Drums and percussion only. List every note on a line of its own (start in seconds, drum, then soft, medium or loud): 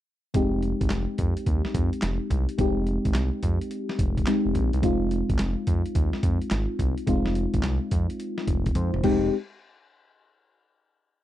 0.34 kick loud
0.34 closed hi-hat medium
0.63 closed hi-hat medium
0.81 kick medium
0.81 closed hi-hat soft
0.90 snare loud
0.90 clap medium
0.90 closed hi-hat medium
1.18 kick medium
1.18 closed hi-hat medium
1.37 closed hi-hat medium
1.46 kick medium
1.46 closed hi-hat medium
1.65 snare medium
1.74 kick loud
1.74 closed hi-hat medium
1.93 closed hi-hat soft
2.02 snare loud
2.02 clap medium
2.02 closed hi-hat medium
2.30 kick medium
2.30 closed hi-hat medium
2.49 closed hi-hat medium
2.59 kick loud
2.59 closed hi-hat medium
2.87 closed hi-hat medium
3.05 kick medium
3.05 closed hi-hat medium
3.14 snare loud
3.14 clap medium
3.14 closed hi-hat medium
3.43 kick medium
3.43 closed hi-hat medium
3.61 closed hi-hat medium
3.71 closed hi-hat medium
3.89 snare medium
3.99 kick loud
3.99 closed hi-hat medium
4.17 kick medium
4.17 closed hi-hat soft
4.26 snare medium
4.26 clap medium
4.26 closed hi-hat medium
4.55 kick medium
4.55 closed hi-hat medium
4.73 closed hi-hat soft
4.83 kick loud
4.83 closed hi-hat medium
5.11 closed hi-hat medium
5.30 kick medium
5.30 closed hi-hat medium
5.38 snare loud
5.38 clap medium
5.38 closed hi-hat medium
5.67 kick medium
5.67 closed hi-hat medium
5.86 closed hi-hat medium
5.95 kick loud
5.95 closed hi-hat medium
6.13 snare medium
6.23 kick loud
6.23 closed hi-hat medium
6.42 closed hi-hat soft
6.50 snare loud
6.50 clap medium
6.50 closed hi-hat medium
6.79 kick medium
6.79 closed hi-hat medium
6.98 closed hi-hat medium
7.07 kick loud
7.07 closed hi-hat medium
7.26 snare medium
7.35 closed hi-hat medium
7.54 kick medium
7.54 closed hi-hat medium
7.63 snare loud
7.63 clap medium
7.63 closed hi-hat medium
7.91 kick medium
7.91 closed hi-hat medium
8.10 closed hi-hat medium
8.20 closed hi-hat medium
8.38 snare medium
8.47 kick loud
8.47 closed hi-hat medium
8.66 kick medium
8.66 closed hi-hat soft
8.75 closed hi-hat medium
8.75 high tom medium
8.94 mid tom medium
9.04 kick loud
9.04 crash medium